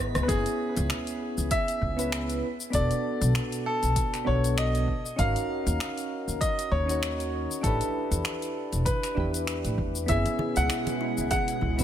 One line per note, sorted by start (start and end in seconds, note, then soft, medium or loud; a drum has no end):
0.00 0.11 G#1 medium
0.00 0.24 B3 medium
0.00 0.30 B3 medium
0.00 0.25 D#4 medium
0.00 0.26 E4 medium
0.00 0.27 B4 medium
0.00 0.30 B6 medium
0.15 0.27 C#2 medium
0.15 cross-stick medium
0.15 closed hi-hat soft
0.15 high conga medium
0.15 shaker soft
0.23 1.94 B3 medium
0.23 0.29 B4 medium
0.27 0.43 F#1 medium
0.27 1.94 C#4 medium
0.27 1.95 E4 medium
0.27 1.55 G#4 medium
0.27 1.96 G#4 loud
0.27 kick loud
0.27 closed hi-hat medium
0.27 shaker medium
0.46 closed hi-hat soft
0.46 shaker soft
0.77 0.88 C#2 loud
0.77 closed hi-hat soft
0.77 shaker medium
0.90 finger snap loud
0.90 closed hi-hat medium
0.90 shaker medium
1.07 closed hi-hat soft
1.07 shaker soft
1.38 1.49 C#2 medium
1.38 shaker medium
1.51 2.39 E5 loud
1.51 kick loud
1.51 closed hi-hat medium
1.51 shaker medium
1.68 closed hi-hat soft
1.68 shaker soft
1.82 2.39 C#2 medium
1.82 kick medium
1.97 2.40 B3 medium
1.97 2.41 C#4 medium
1.97 2.41 E4 medium
1.97 2.42 B4 loud
1.97 closed hi-hat soft
1.97 shaker medium
2.12 finger snap loud
2.12 closed hi-hat medium
2.12 shaker medium
2.30 closed hi-hat soft
2.30 shaker soft
2.60 shaker medium
2.70 2.88 E1 loud
2.70 4.22 B3 medium
2.70 4.23 D4 medium
2.70 4.23 F#4 medium
2.70 kick loud
2.70 closed hi-hat medium
2.70 shaker medium
2.75 4.24 A4 loud
2.75 3.69 D5 loud
2.91 closed hi-hat soft
2.91 shaker soft
3.21 3.33 B1 loud
3.21 closed hi-hat soft
3.21 shaker medium
3.35 finger snap loud
3.35 closed hi-hat medium
3.35 shaker medium
3.52 closed hi-hat soft
3.52 shaker soft
3.66 4.29 A4 loud
3.83 3.94 B1 medium
3.83 closed hi-hat soft
3.83 shaker medium
3.96 kick loud
3.96 closed hi-hat medium
3.96 shaker medium
4.14 finger snap soft
4.14 closed hi-hat soft
4.14 shaker soft
4.24 4.84 B1 medium
4.24 4.85 B3 loud
4.24 4.86 D4 medium
4.24 4.86 F#4 medium
4.24 4.86 A4 loud
4.24 4.55 C#5 loud
4.24 kick medium
4.44 closed hi-hat soft
4.44 shaker medium
4.58 5.21 D#5 loud
4.58 finger snap loud
4.58 closed hi-hat medium
4.58 shaker medium
4.75 closed hi-hat soft
4.75 shaker soft
4.88 kick medium
5.06 shaker medium
5.16 5.33 G#1 loud
5.16 6.84 C#4 medium
5.16 6.84 D#4 medium
5.16 6.85 F#4 medium
5.16 6.45 F5 loud
5.16 kick loud
5.16 closed hi-hat medium
5.16 shaker medium
5.21 6.86 A#4 loud
5.36 closed hi-hat soft
5.36 shaker soft
5.66 5.78 D#2 loud
5.66 closed hi-hat soft
5.66 shaker medium
5.80 finger snap loud
5.80 closed hi-hat medium
5.80 shaker medium
5.98 closed hi-hat soft
5.98 shaker soft
6.28 6.39 D#2 medium
6.28 shaker medium
6.41 6.69 D#5 loud
6.41 kick loud
6.41 closed hi-hat medium
6.41 shaker medium
6.59 closed hi-hat soft
6.59 shaker soft
6.72 7.45 D#2 loud
6.72 7.66 C#5 loud
6.72 kick medium
6.86 7.59 C#4 medium
6.86 7.60 D#4 medium
6.86 7.61 F#4 medium
6.86 closed hi-hat soft
6.86 shaker medium
6.91 7.61 C#5 loud
7.03 finger snap loud
7.03 closed hi-hat medium
7.03 shaker medium
7.20 closed hi-hat soft
7.20 shaker soft
7.51 shaker medium
7.61 7.78 A1 loud
7.61 9.12 D4 medium
7.61 9.13 E4 medium
7.61 9.14 G4 medium
7.61 8.82 A4 medium
7.61 kick loud
7.61 closed hi-hat medium
7.61 shaker medium
7.67 9.15 B4 loud
7.81 closed hi-hat soft
7.81 shaker soft
8.11 8.22 E2 medium
8.11 closed hi-hat soft
8.11 shaker medium
8.25 finger snap loud
8.25 closed hi-hat medium
8.25 shaker medium
8.42 closed hi-hat soft
8.42 shaker soft
8.72 8.84 E1 medium
8.72 closed hi-hat soft
8.72 shaker medium
8.85 9.74 B4 medium
8.85 kick loud
8.85 closed hi-hat medium
8.85 shaker medium
9.03 finger snap soft
9.03 closed hi-hat soft
9.03 shaker soft
9.15 9.64 E2 loud
9.15 10.04 D4 medium
9.15 10.05 E4 medium
9.15 10.06 G4 medium
9.15 kick medium
9.20 10.07 B4 loud
9.34 closed hi-hat soft
9.34 shaker medium
9.47 finger snap loud
9.47 closed hi-hat medium
9.47 shaker medium
9.64 9.76 A2 medium
9.64 closed hi-hat soft
9.64 shaker soft
9.78 10.04 E2 medium
9.78 kick medium
9.95 shaker medium
10.06 10.23 F#1 loud
10.06 11.84 B2 medium
10.06 11.84 G#3 medium
10.06 11.74 B3 loud
10.06 11.74 C#4 medium
10.06 11.84 E4 medium
10.06 10.25 E4 loud
10.06 11.75 E4 medium
10.06 10.58 E5 loud
10.06 kick loud
10.06 closed hi-hat medium
10.06 shaker medium
10.11 11.76 G#4 loud
10.26 closed hi-hat soft
10.26 muted conga medium
10.26 shaker soft
10.39 10.48 G#4 loud
10.39 high conga medium
10.56 10.68 C#2 loud
10.56 11.29 F#5 loud
10.56 closed hi-hat soft
10.56 shaker medium
10.70 10.86 E4 medium
10.70 finger snap medium
10.70 closed hi-hat medium
10.70 shaker medium
10.87 closed hi-hat soft
10.87 muted conga medium
10.87 high conga medium
10.87 shaker soft
11.01 11.17 E4 loud
11.18 11.29 C#2 medium
11.18 shaker medium
11.31 11.40 G#4 loud
11.31 11.84 F#5 loud
11.31 kick loud
11.31 closed hi-hat medium
11.31 muted conga medium
11.31 high conga medium
11.31 shaker medium
11.48 closed hi-hat soft
11.48 shaker soft
11.61 11.84 C#2 loud
11.61 11.78 E4 medium
11.61 kick medium
11.78 11.84 B3 medium
11.78 11.84 C#4 medium
11.78 11.84 E4 medium
11.78 11.84 B4 loud
11.78 closed hi-hat soft
11.78 high conga medium
11.78 low conga medium
11.78 shaker medium